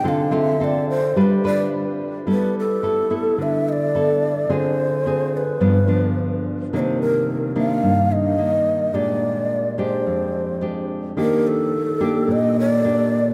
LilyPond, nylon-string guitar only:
\new Staff \with { instrumentName = "Nylon-string guitar" } { \time 4/4 \key g \mixolydian \tempo 4 = 108 << { <c' f' a'>8 <c' f' a'>8 <c' f' a'>8 r8 <d' f' b'>8 <d' f' b'>4. | \key c \lydian <b e' a'>8 r8 <b e' a'>8 <b e' a'>4. <b e' a'>8 r8 | <c' f' aes'>4 <c' f' aes'>8 r8 <f b d'>8 <f b d'>4. | <ees bes d'>4. <ees bes d'>4. <ees bes>4 |
<aes d' g'>4. <aes d' g'>4. <aes d' g'>4 | <bes d' g'>4 r8 <bes d' g'>4. <bes d' g'>8 r8 | } \\ { d2 g2 | g2 d2 | d2 g,2 | c2 g,2 |
bes,2 f,2 | ees2 bes,2 | } >> }